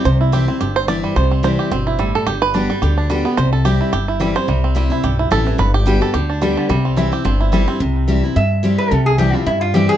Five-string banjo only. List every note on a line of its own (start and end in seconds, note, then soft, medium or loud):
0.00 1.03 G3 medium
0.00 0.35 C4 medium
0.05 0.20 C5 medium
0.21 0.58 E4 medium
0.33 0.60 G4 medium
0.48 0.86 C4 medium
0.61 1.59 G4 medium
0.76 0.88 C5 loud
0.88 1.16 D5 loud
1.04 1.99 G3 medium
1.16 1.43 C5 loud
1.31 1.69 C4 medium
1.44 1.70 C5 medium
1.59 2.18 G4 medium
1.72 2.11 C4 medium
1.87 2.24 E4 medium
1.99 2.69 G3 medium
2.15 2.27 A4 medium
2.26 2.42 G4 medium
2.42 2.83 B4 loud
2.54 2.94 D4 medium
2.70 3.09 G3 medium
2.82 2.96 G4 medium
2.98 3.35 D4 medium
3.10 3.56 G3 medium
3.25 3.37 B3 medium
3.37 3.52 C5 loud
3.53 3.65 A4 medium
3.65 3.92 G4 medium
3.81 4.07 E4 medium
3.93 4.37 G4 medium
4.08 4.35 E4 medium
4.21 4.48 G3 medium
4.36 4.91 C5 loud
4.49 4.76 G3 medium
4.64 5.01 C4 medium
4.77 5.35 G3 medium
4.92 5.18 E4 medium
5.04 5.74 G4 medium
5.19 5.31 E4 medium
5.32 5.57 A4 loud
5.47 5.59 E3 medium
5.59 5.74 B4 loud
5.74 6.00 G4 loud
5.87 6.41 G3 medium
6.02 6.15 A4 medium
6.14 6.54 G4 medium
6.29 6.67 D4 medium
6.42 6.69 G3 medium
6.57 6.70 D3 medium
6.70 7.10 G3 medium
6.85 7.22 C4 medium
6.97 7.37 E4 medium
7.13 7.50 G4 medium
7.25 7.65 C4 medium
7.40 7.78 E4 medium
7.53 7.80 G3 medium
7.68 7.80 C4 medium